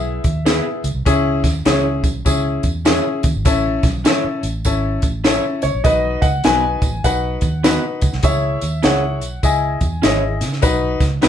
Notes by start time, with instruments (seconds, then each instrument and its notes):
Already playing: fingered electric bass B1, upright piano B3 E4 G#4, grand piano E5
0.24 fingered electric bass D#2, kick, closed hi-hat, tambourine
0.45 upright piano B3 E4 G#4, clean electric guitar B3 E4 G#4 B4, snare, closed hi-hat, tambourine
0.84 fingered electric bass C#2, closed hi-hat, tambourine
0.95 fingered electric bass C2
1.05 fingered electric bass C#2, upright piano C#4 E4 G#4, kick, closed hi-hat, tambourine
1.44 fingered electric bass D#2, kick, snare, closed hi-hat, tambourine
1.65 fingered electric bass C#2, upright piano C#4 E4 G#4, clean electric guitar C#4 E4 G#4 C#5, snare, closed hi-hat, tambourine
2.04 fingered electric bass B1, kick, closed hi-hat, tambourine
2.25 fingered electric bass C#2, upright piano C#4 E4 G#4, kick, closed hi-hat, tambourine
2.63 fingered electric bass E2, kick, closed hi-hat, tambourine
2.85 upright piano C#4 E4 G#4, clean electric guitar C#4 E4 G#4 C#5, snare, closed hi-hat, tambourine
3.23 fingered electric bass D#2, kick, closed hi-hat, tambourine
3.35 fingered electric bass G#1
3.45 fingered electric bass A1, upright piano C#4 E4 A4, kick, closed hi-hat, tambourine
3.83 fingered electric bass B1, kick, snare, closed hi-hat, tambourine
4.05 clean electric guitar C#4 E4 A4 C#5, upright piano C#4 E4 A4, snare, closed hi-hat, tambourine
4.24 muted fingered electric bass stroke
4.43 fingered electric bass A1, closed hi-hat, tambourine
4.65 fingered electric bass G#1, upright piano C#4 E4 A4, kick, closed hi-hat, tambourine
5.02 fingered electric bass A1, kick, closed hi-hat, tambourine
5.24 clean electric guitar C#4 E4 A4 C#5, upright piano C#4 E4 A4, snare, closed hi-hat, tambourine
5.62 fingered electric bass C#2, grand piano C#5, closed hi-hat, tambourine
5.75 fingered electric bass A#1
5.84 fingered electric bass B1, upright piano D#4 F#4 B4, grand piano D#5, kick, closed hi-hat, tambourine
6.22 fingered electric bass C#2, grand piano F#5, kick, closed hi-hat, tambourine
6.44 fingered electric bass B1, clean electric guitar B3 D#4 F#4 B4, upright piano D#4 F#4 B4, grand piano G#5, snare, closed hi-hat, tambourine
6.82 fingered electric bass A1, kick, closed hi-hat, tambourine
7.04 fingered electric bass B1, upright piano D#4 F#4 B4, grand piano F#5, kick, closed hi-hat, tambourine
7.41 fingered electric bass D#2, kick, closed hi-hat, tambourine
7.63 clean electric guitar B3 D#4 F#4 B4, upright piano D#4 F#4 B4, snare, closed hi-hat, tambourine
8.01 fingered electric bass C#2, kick, closed hi-hat, tambourine
8.13 fingered electric bass C2, snare
8.23 fingered electric bass C#2, upright piano E4 G#4 C#5, grand piano E5, kick, closed hi-hat, tambourine
8.61 fingered electric bass D#2, closed hi-hat, tambourine
8.82 fingered electric bass C#2, clean electric guitar C#4 E4 G#4 C#5, upright piano E4 G#4 C#5, grand piano F#5, snare, closed hi-hat, tambourine
9.21 fingered electric bass B1, closed hi-hat, tambourine
9.43 fingered electric bass C#2, upright piano E4 G#4 D#5, grand piano G#5, kick, closed hi-hat, tambourine
9.81 fingered electric bass E2, kick, closed hi-hat, tambourine
10.02 fingered electric bass G#1, clean electric guitar C#4 E4 G#4 C#5, upright piano E4 G#4 D#5, snare, closed hi-hat, tambourine
10.41 fingered electric bass C#3, snare, closed hi-hat, tambourine
10.52 snare
10.62 fingered electric bass B1, upright piano D#4 F#4 B4, kick, closed hi-hat, tambourine
11.00 fingered electric bass C#2, kick, snare, closed hi-hat, tambourine
11.21 fingered electric bass B1, clean electric guitar B3 D#4 F#4 B4, upright piano D#4 F#4 B4, snare, closed hi-hat, tambourine